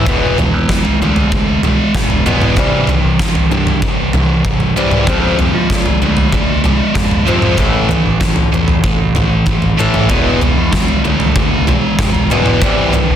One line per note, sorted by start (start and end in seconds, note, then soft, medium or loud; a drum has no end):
0.06 0.36 E2 medium
0.06 0.37 B2 medium
0.06 0.36 E3 medium
0.06 0.37 G#3 medium
0.06 0.37 B3 loud
0.06 kick loud
0.06 floor tom medium
0.38 0.67 E2 medium
0.38 0.67 B2 medium
0.38 0.67 E3 medium
0.38 0.67 G#3 medium
0.38 floor tom medium
0.54 0.83 E2 medium
0.69 0.98 E2 medium
0.69 0.98 B2 medium
0.69 0.98 E3 medium
0.69 0.98 G#3 medium
0.69 kick medium
0.69 snare medium
0.85 floor tom medium
1.01 1.60 D2 medium
1.01 1.29 E2 medium
1.01 1.30 B2 medium
1.01 1.29 E3 medium
1.01 1.30 G#3 medium
1.16 floor tom medium
1.32 1.60 E2 medium
1.32 1.61 B2 medium
1.32 1.60 E3 medium
1.32 1.60 G#3 medium
1.32 kick loud
1.63 1.78 B1 medium
1.63 1.92 E2 medium
1.63 1.92 B2 medium
1.63 1.92 E3 medium
1.63 1.92 G#3 medium
1.63 floor tom medium
1.94 2.24 E1 loud
1.94 2.23 E2 medium
1.94 2.23 B2 medium
1.94 2.23 E3 medium
1.94 2.23 G#3 medium
1.94 kick loud
1.94 snare medium
1.94 mid tom medium
2.10 floor tom medium
2.26 2.56 E1 medium
2.26 2.55 E2 medium
2.26 2.56 B2 medium
2.26 2.56 E3 medium
2.26 2.55 G#3 medium
2.26 2.56 B3 medium
2.26 mid tom medium
2.41 mid tom medium
2.56 2.86 C2 medium
2.56 2.87 C3 medium
2.56 2.87 E3 medium
2.56 2.87 G3 medium
2.56 kick loud
2.56 floor tom medium
2.87 3.17 C3 medium
2.87 3.17 E3 medium
2.87 floor tom medium
3.05 3.34 C2 medium
3.19 3.48 C3 medium
3.19 3.48 E3 medium
3.19 kick loud
3.19 snare medium
3.35 floor tom medium
3.51 3.81 G2 medium
3.51 3.79 C3 medium
3.51 3.79 E3 medium
3.67 floor tom medium
3.82 4.11 C3 medium
3.82 4.11 E3 medium
3.82 kick loud
4.13 5.04 C2 medium
4.13 4.42 C3 medium
4.13 4.42 E3 medium
4.13 floor tom medium
4.44 4.73 C3 medium
4.44 4.73 E3 medium
4.44 kick loud
4.44 mid tom medium
4.60 floor tom medium
4.76 5.06 C3 medium
4.76 5.06 E3 medium
4.76 5.06 G3 medium
4.91 mid tom medium
5.07 5.52 F2 medium
5.07 5.38 F2 medium
5.07 5.38 C3 medium
5.07 5.37 F3 medium
5.07 5.37 G#3 medium
5.07 5.37 C4 medium
5.07 kick loud
5.07 floor tom medium
5.39 5.67 F2 medium
5.39 5.68 C3 medium
5.39 5.68 F3 medium
5.39 5.68 G#3 medium
5.39 floor tom medium
5.54 5.84 F3 medium
5.70 5.99 F2 medium
5.70 5.99 C3 medium
5.70 5.99 F3 medium
5.70 5.99 G#3 medium
5.70 kick loud
5.70 snare medium
5.86 floor tom medium
6.02 6.61 D2 medium
6.02 6.30 F2 medium
6.02 6.30 C3 medium
6.02 6.30 F3 medium
6.02 6.30 G#3 medium
6.17 floor tom medium
6.32 6.62 F2 medium
6.32 6.62 C3 medium
6.32 6.61 F3 medium
6.32 6.61 G#3 medium
6.32 kick medium
6.64 6.80 C2 medium
6.64 6.93 F2 medium
6.64 6.93 C3 medium
6.64 6.93 F3 medium
6.64 6.93 G#3 medium
6.64 floor tom medium
6.95 7.25 F2 loud
6.95 7.24 F2 medium
6.95 7.24 C3 medium
6.95 7.24 F3 medium
6.95 7.24 G#3 medium
6.95 kick loud
6.95 snare medium
6.95 mid tom medium
7.11 floor tom medium
7.26 7.57 F2 medium
7.26 7.57 C3 medium
7.26 7.56 F3 medium
7.26 7.57 G#3 medium
7.26 7.57 C4 medium
7.26 mid tom medium
7.42 mid tom medium
7.57 7.88 A1 loud
7.57 7.88 A2 medium
7.57 7.88 E3 medium
7.57 7.88 A3 medium
7.57 kick loud
7.57 floor tom medium
7.89 8.18 A2 medium
7.89 8.18 E3 medium
7.89 floor tom medium
8.06 8.36 A1 medium
8.20 8.49 A2 medium
8.20 8.50 E3 medium
8.20 kick loud
8.20 snare medium
8.36 floor tom medium
8.52 8.83 E2 medium
8.52 8.81 A2 medium
8.52 8.81 E3 medium
8.68 floor tom medium
8.84 9.12 A2 medium
8.84 9.13 E3 medium
8.84 kick loud
9.15 10.07 A1 medium
9.15 9.44 A2 medium
9.15 9.44 E3 medium
9.15 floor tom medium
9.46 9.76 A2 medium
9.46 9.76 E3 medium
9.46 kick loud
9.46 mid tom medium
9.62 floor tom medium
9.77 10.08 A2 medium
9.77 10.08 E3 medium
9.77 10.08 A3 medium
9.94 mid tom medium
10.09 10.55 E1 medium
10.09 10.40 E2 medium
10.09 10.40 B2 medium
10.09 10.39 E3 medium
10.09 10.39 G#3 medium
10.09 10.40 B3 loud
10.09 kick loud
10.09 floor tom medium
10.41 10.70 B2 medium
10.41 10.70 E3 medium
10.41 10.70 G#3 medium
10.41 floor tom medium
10.58 10.87 E2 loud
10.72 11.02 E2 medium
10.72 11.02 B2 medium
10.72 11.01 E3 medium
10.72 11.01 G#3 medium
10.72 kick loud
10.72 snare medium
10.88 floor tom medium
11.04 11.64 D2 medium
11.04 11.33 E2 medium
11.04 11.33 B2 medium
11.04 11.33 E3 medium
11.04 11.33 G#3 medium
11.20 floor tom medium
11.36 11.64 E2 medium
11.36 11.65 B2 medium
11.36 11.65 E3 medium
11.36 11.65 G#3 medium
11.36 kick loud
11.67 11.83 B1 medium
11.67 11.96 E2 medium
11.67 11.96 B2 medium
11.67 11.96 E3 medium
11.67 11.96 G#3 medium
11.67 floor tom medium
11.99 12.29 E1 medium
11.99 12.28 E2 medium
11.99 12.28 B2 medium
11.99 12.28 E3 medium
11.99 12.28 G#3 medium
11.99 kick loud
11.99 snare medium
11.99 mid tom medium
12.15 floor tom medium
12.30 12.61 E1 loud
12.30 12.61 E2 medium
12.30 12.61 B2 medium
12.30 12.61 E3 medium
12.30 12.61 G#3 medium
12.30 12.61 B3 medium
12.30 mid tom medium
12.46 mid tom medium
12.62 12.92 C2 loud
12.62 12.92 C3 medium
12.62 12.92 E3 medium
12.62 12.92 G3 medium
12.62 kick loud
12.62 floor tom medium
12.93 13.16 C3 medium
12.93 13.16 E3 medium
12.93 floor tom medium
13.10 13.16 C2 medium